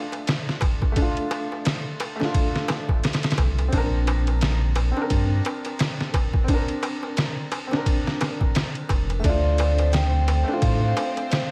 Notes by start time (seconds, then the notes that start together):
Already playing: A3 D4 F4
0.12 ride, darbuka tek
0.27 snare, ride, darbuka tek
0.49 snare
0.61 kick, ride, darbuka tek
0.82 kick, darbuka tek
0.92 A3
0.96 D4, kick, ride, darbuka tek
1.02 F4
1.17 ride
1.31 ride, darbuka tek
1.52 darbuka tek
1.65 snare, ride, darbuka tek
2.00 ride, darbuka tek
2.16 A3
2.20 D4, snare, darbuka tek
2.25 F4
2.34 kick, ride, darbuka tek
2.56 snare
2.68 snare, ride, darbuka tek
2.89 kick, darbuka tek
3.04 snare, ride, darbuka tek
3.13 snare, ride
3.23 snare, ride
3.30 snare, ride
3.38 C2, kick, ride, darbuka tek
3.58 ride, darbuka tek
3.68 C4
3.72 A#1 D4, kick, ride, darbuka tek
3.77 A#4
4.07 ride, darbuka tek
4.27 ride, darbuka tek
4.41 snare, ride, darbuka tek
4.75 ride, darbuka tek
4.91 C4
4.97 D4, darbuka tek
5.02 A#4
5.10 G2, kick, ride, darbuka tek
5.45 ride, darbuka tek
5.65 ride, darbuka tek
5.79 snare, ride, darbuka tek
6.01 snare
6.14 kick, ride, darbuka tek
6.33 kick, darbuka tek
6.44 C4, darbuka tek
6.48 D4, kick, ride
6.54 A#4
6.68 ride
6.83 ride, darbuka tek
7.03 darbuka tek
7.17 snare, ride, darbuka tek
7.52 ride, darbuka tek
7.67 C4
7.71 D4, snare, darbuka tek
7.77 A#4
7.86 kick, ride, darbuka tek
8.07 snare
8.21 snare, ride, darbuka tek
8.41 kick, darbuka tek
8.55 snare, ride, darbuka tek
8.75 ride
8.89 F1, kick, ride, darbuka tek
9.10 ride, darbuka tek
9.20 A3 E5
9.24 D2 C4 D4 C5 D5, kick, ride, darbuka tek
9.29 F4
9.58 ride, darbuka tek
9.78 ride, darbuka tek
9.92 G5, snare, ride, darbuka tek
10.28 ride, darbuka tek
10.44 A3
10.48 D4, darbuka tek
10.53 F4
10.61 A2 F5, kick, ride, darbuka tek
10.97 ride, darbuka tek
11.17 ride, darbuka tek
11.31 snare, ride, darbuka tek